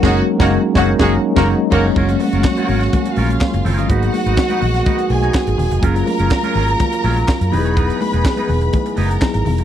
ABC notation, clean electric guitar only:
X:1
M:4/4
L:1/16
Q:1/4=124
K:F#
V:1 name="Clean electric guitar"
[A,DGc]2 z [A,DGc]2 z [A,DGc]2 [A,DGc]2 z [A,DGc]2 z [A,DGc]2 | [CEAc]2 z [CEAc] z [CEAc] [CEAc] z3 [CEAc]2 z2 [CEAc] [CEAd] | [B,DFB]2 z [B,DFB] z [B,DFB]2 z [B,DFB]2 z [B,DFc] z4 | [F,CEA]2 z [F,CEA] z [F,CEA] [F,CEA] z3 [F,CEA]2 z2 [B,DGB] [B,DGc] |
[B,DGB]2 z [B,DGB] z [B,DGB]2 z3 [B,DGB]2 z4 |]